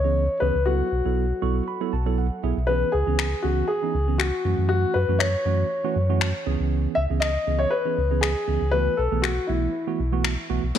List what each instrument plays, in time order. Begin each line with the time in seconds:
Already playing: sub bass C#2, grand piano C#5
0.04 tine electric piano E3 B3 C#4 G#4
0.40 sub bass C#2, tine electric piano E3 B3 C#4 G#4, grand piano B4
0.55 sub bass C#2
0.66 tine electric piano F#3 B3 E4 A4, grand piano F#4
0.92 sub bass B1
1.05 sub bass B1, tine electric piano F#3 B3 E4 A4
1.42 sub bass B1, tine electric piano F#3 B3 E4 A4 C#6
1.68 tine electric piano B5
1.81 tine electric piano F#3 B3 E4 A4
1.93 sub bass B1, tine electric piano A5
2.06 tine electric piano F#3 B3 E4 A4
2.18 tine electric piano F#5
2.43 sub bass B1, tine electric piano F#3 B3 E4 G#4 E5
2.57 sub bass B1
2.67 tine electric piano E3 B3 C#4 G#4, grand piano B4
2.92 sub bass C#2, grand piano G#4
3.07 sub bass C#2, tine electric piano E3 B3 C#4 G#4
3.19 finger snap
3.42 sub bass C#2, tine electric piano E3 B3 C#4 G#4, grand piano F#4
3.68 grand piano G#4
3.83 tine electric piano E3 B3 C#4 D#4
3.94 sub bass C#2
4.08 tine electric piano E3 B3 C#4 G#4
4.18 grand piano F#4, finger snap
4.45 sub bass F#2, tine electric piano E3 A3 C#4 F#4
4.58 sub bass F#2
4.69 grand piano F#4
4.94 sub bass F#2, grand piano B4
5.08 sub bass F#2, tine electric piano E3 A3 C#4 F#4
5.19 grand piano C#5, finger snap
5.45 sub bass F#2, tine electric piano E3 A3 C#4 F#4
5.84 tine electric piano E3 A3 C#4 F#4
5.96 sub bass F#2
6.09 tine electric piano E3 A3 C#4 F#4
6.21 finger snap
6.46 sub bass C#2, tine electric piano E3 B3 C#4 G#4
6.60 sub bass C#2
6.95 sub bass C#2, grand piano E5
7.10 sub bass C#2, tine electric piano E3 B3 C#4 G#4
7.20 grand piano D#5, finger snap
7.47 sub bass C#2, tine electric piano E3 B3 C#4 G#4
7.59 grand piano C#5
7.70 grand piano B4
7.86 tine electric piano E3 B3 C#4 G#4
7.98 sub bass C#2
8.10 tine electric piano E3 B3 C#4 G#4
8.21 grand piano G#4, finger snap
8.48 sub bass C#2, tine electric piano E3 B3 C#4 G#4
8.61 sub bass C#2
8.71 tine electric piano E3 A3 B3 F#4, grand piano B4
8.97 sub bass B1, grand piano A4
9.12 sub bass B1, tine electric piano E3 A3 B3 G#4
9.22 grand piano F#4, finger snap
9.47 sub bass B1, tine electric piano E3 A3 B3 E4, grand piano E4
9.87 tine electric piano E3 A3 B3 F#4
9.99 sub bass B1
10.12 tine electric piano E3 A3 B3 F#4
10.24 finger snap
10.50 sub bass B1, tine electric piano E3 A3 B3 F#4
10.63 sub bass B1
10.75 supersaw synth E3 C#4 B4, tine electric piano E3 B3, snare, crash